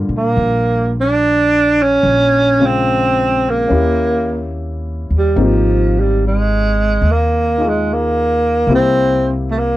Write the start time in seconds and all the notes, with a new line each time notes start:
Already playing: D3 G3 A#3 F4 G#4
0.09 A#2
0.17 A#3
0.37 A#1
1.01 D4
1.82 C#4
2.03 A#1
2.60 C#3 G#3 C4 F4
2.66 C4
3.50 A#3
3.68 D#2 A#3 C#4 E4
3.72 G4
5.10 D#2
5.18 G3
5.36 G#1 A#3 C4 D#4 G4
5.44 F3
6.00 G3
6.27 G#3
7.02 D#2
7.11 A#3
7.58 D#4 F4 G#4
7.69 G#3
7.93 A#3
8.67 C2 A#3 C4 E4 G4
8.75 C4
9.51 A3
9.58 A#3